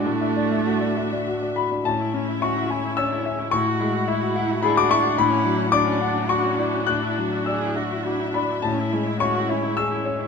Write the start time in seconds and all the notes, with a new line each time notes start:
Already playing: D4 F#4
0.06 A2 A3 E5
0.21 E5
0.36 D5
0.51 E5
0.67 F#4
0.81 D5
0.97 E5
1.12 D5
1.27 F#4
1.42 D5
1.56 F#4 B5
1.71 D4
1.84 A2 G#3 C#4 E5 A5
2.00 E4
2.14 C#4 E4
2.29 E4
2.42 C#4 F#4 E5 C#6
2.56 E4
2.70 C#4 E4 G#5
2.84 E4
2.97 C#4 D4 C#5 E6
3.11 E4
3.25 C#4 E5
3.38 E4
3.51 A2 E4 F#4 F#5 C#6
3.66 F#4
3.80 G#3 E4
3.94 F#4
4.08 E4 E5
4.21 F#4
4.36 E4 F#5
4.50 F#4
4.62 D4 E4 G#4 B5
4.75 F#4 D6
4.89 E4 E5 C#6
5.02 F#4
5.15 A2 D4 E4 F#4 B5
5.30 C#4
5.44 F#3 D4
5.57 C#4
5.71 D4 D5 D6
5.85 C#4
5.99 D4 F#5
6.14 C#4
6.27 D4 F#4 C#6
6.43 C#4
6.57 D4 E4 D5
6.73 C#4
6.87 A2 D4 E5 F#6
7.03 E4
7.17 F#3 D4
7.32 E4
7.46 D4 G#4 D5 E6
7.61 E4
7.76 D4 F#4 E5
7.91 E4
8.05 D4 E4 F#4
8.20 E4
8.33 D4 D5 B5
8.50 E4
8.62 A2 G#3 C#4 A5
8.79 E4
8.91 G#3 C#4 E4
9.07 E4
9.20 C#4 F#4 C#5 C#6
9.35 E4
9.49 C#4 E4 E5
9.63 E4
9.77 C#4 G#4 E6
9.91 E4
10.05 C#4 C#5
10.20 E4